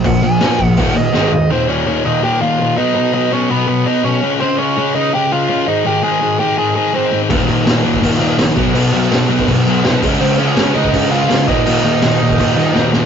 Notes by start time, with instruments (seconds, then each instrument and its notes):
0.04 picked electric bass A#1, distorted electric guitar A#2 F3, overdriven electric guitar F#5, kick, crash
0.22 picked electric bass A#1, distorted electric guitar A#2 F3, overdriven electric guitar G#5, crash
0.40 picked electric bass A#1, distorted electric guitar A#2 F3 A#3, snare, crash
0.59 picked electric bass A#1, distorted electric guitar A#2 F3, kick, crash
0.65 overdriven electric guitar F#5
0.77 picked electric bass D#1, distorted electric guitar D#2 A#2 D#3, overdriven electric guitar F#5, kick, crash
0.95 picked electric bass D#1, distorted electric guitar D#2 A#2, overdriven electric guitar D#5, crash
1.12 picked electric bass G#1, distorted electric guitar G#2 D#3 G#3, overdriven electric guitar D#5, snare
1.30 picked electric bass G#1, distorted electric guitar G#2 D#3, floor tom
1.50 distorted electric guitar D#2 A#2 D#3, overdriven electric guitar C4 C5
1.67 distorted electric guitar D#2 A#2 D#3, overdriven electric guitar C#4 C#5
1.86 distorted electric guitar D#2 A#2 D#3, overdriven electric guitar C#4 C#5
2.05 distorted electric guitar D#2 A#2 D#3, overdriven electric guitar D#4 D#5
2.22 distorted electric guitar D#2 A#2 D#3, overdriven electric guitar G4 G5
2.40 distorted electric guitar D#2 A#2 D#3, overdriven electric guitar F4 F5
2.59 distorted electric guitar D#2 A#2 D#3
2.76 distorted electric guitar B2 F#3 B3, overdriven electric guitar D#4 D#5
2.95 distorted electric guitar B2 F#3 B3
3.13 distorted electric guitar B2 F#3 B3, overdriven electric guitar D#4 D#5
3.31 distorted electric guitar B2 F#3 B3, overdriven electric guitar C#4 C#5
3.50 distorted electric guitar B2 F#3 B3, overdriven electric guitar B3 B4
3.67 distorted electric guitar B2 F#3 B3, overdriven electric guitar B3 B4
3.85 distorted electric guitar B2 F#3 B3, overdriven electric guitar D#4 D#5
4.04 distorted electric guitar B2 F#3 B3, overdriven electric guitar C#4 C#5
4.22 distorted electric guitar C#3 G#3 C#4
4.40 distorted electric guitar C#3 G#3 C#4, overdriven electric guitar C4 C5
4.59 distorted electric guitar C#3 G#3 C#4, overdriven electric guitar C#4 C#5
4.77 distorted electric guitar C#3 G#3 C#4
4.95 distorted electric guitar C#3 G#3 C#4, overdriven electric guitar D#4 D#5
5.14 distorted electric guitar C#3 G#3 C#4, overdriven electric guitar G4 G5
5.31 distorted electric guitar C#3 G#3 C#4, overdriven electric guitar F4 F5
5.49 distorted electric guitar C#3 G#3 C#4
5.67 distorted electric guitar G#2 D#3 G#3, overdriven electric guitar D#4 D#5
5.85 distorted electric guitar G#2 D#3 G#3, overdriven electric guitar G4 G5
6.03 distorted electric guitar G#2 D#3 G#3, overdriven electric guitar G#4 G#5
6.21 distorted electric guitar G#2 D#3 G#3
6.39 distorted electric guitar G#2 D#3 G#3, overdriven electric guitar G4 G5
6.57 distorted electric guitar G#2 D#3 G#3, overdriven electric guitar G#4 G#5
6.76 distorted electric guitar G#2 D#3 G#3, overdriven electric guitar G#4 G#5
6.93 distorted electric guitar G#2 D#3 G#3, overdriven electric guitar C4 C5
7.12 distorted electric guitar G#2 D#3 G#3
7.29 picked electric bass D#1, distorted electric guitar D#2 A#2 D#3, kick, crash
7.48 distorted electric guitar D#2 A#2 D#3, crash
7.66 picked electric bass D#1, distorted electric guitar D#2 A#2 D#3, snare, crash
7.84 picked electric bass D#1, distorted electric guitar D#2 A#2 D#3, crash
7.94 kick
8.02 picked electric bass D#1, distorted electric guitar D#2 A#2 D#3, kick, crash
8.19 distorted electric guitar D#2 A#2 D#3, crash
8.38 picked electric bass A#1, distorted electric guitar D#2 A#2 D#3, snare, crash
8.56 picked electric bass B1, distorted electric guitar B2 F#3 B3, kick, crash
8.74 picked electric bass B1, distorted electric guitar B2 F#3 B3, crash
8.93 picked electric bass B1, distorted electric guitar B2 F#3 B3, crash
9.11 picked electric bass B1, distorted electric guitar B2 F#3 B3, snare, crash
9.29 picked electric bass B1, distorted electric guitar B2 F#3 B3, crash
9.39 kick
9.48 picked electric bass B1, distorted electric guitar B2 F#3 B3, kick, crash
9.66 picked electric bass B1, distorted electric guitar B2 F#3 B3, crash
9.84 picked electric bass C2, distorted electric guitar B2 F#3 B3, snare, crash
10.02 picked electric bass C#2, distorted electric guitar C#3 G#3 C#4, kick, crash
10.21 picked electric bass C#2, distorted electric guitar C#3 G#3 C#4, overdriven electric guitar C4 C5, crash
10.38 distorted electric guitar C#3 G#3 C#4, overdriven electric guitar C#4 C#5, crash
10.57 picked electric bass C#2, distorted electric guitar C#3 G#3 C#4, snare, crash
10.75 picked electric bass C#2, distorted electric guitar C#3 G#3 C#4, overdriven electric guitar D#4 D#5, crash
10.84 kick
10.93 picked electric bass C#2, distorted electric guitar C#3 G#3 C#4, kick, crash
11.11 distorted electric guitar C#3 G#3 C#4, overdriven electric guitar F4 F5, crash
11.30 picked electric bass C#2, distorted electric guitar C#3 G#3 C#4, snare, crash
11.48 picked electric bass D#1, distorted electric guitar D#2 A#2 D#3, overdriven electric guitar D#4 D#5, kick, crash
11.66 picked electric bass D#1, distorted electric guitar D#2 A#2 D#3, crash
11.84 picked electric bass D#1, distorted electric guitar D#2 A#2 D#3, crash
12.02 picked electric bass D#1, distorted electric guitar D#2 A#2 D#3, snare, crash
12.20 picked electric bass D#1, distorted electric guitar D#2 A#2 D#3, crash
12.29 kick
12.38 picked electric bass D#1, distorted electric guitar D#2 A#2 D#3, kick, crash
12.55 picked electric bass D#1, distorted electric guitar D#2 A#2 D#3, crash
12.74 picked electric bass D#1, distorted electric guitar D#2 A#2 D#3, snare
12.93 distorted electric guitar D#2 A#2 D#3, snare